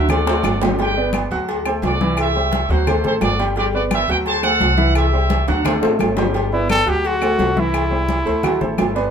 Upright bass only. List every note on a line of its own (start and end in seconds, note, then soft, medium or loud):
0.00 0.40 D2 loud
0.44 1.25 G1 loud
1.31 1.79 D2 medium
1.82 2.64 C2 loud
2.69 3.02 D2 loud
3.04 3.20 A1 medium
3.22 4.03 G1 loud
4.08 4.57 D2 loud
4.60 5.42 C2 loud
5.48 5.80 D2 loud
5.83 5.99 A1 medium
6.00 6.81 G1 loud
6.86 7.35 D2 loud
7.39 8.20 C2 loud
8.25 8.58 D2 medium
8.60 8.77 A1 medium
8.78 9.11 G1 loud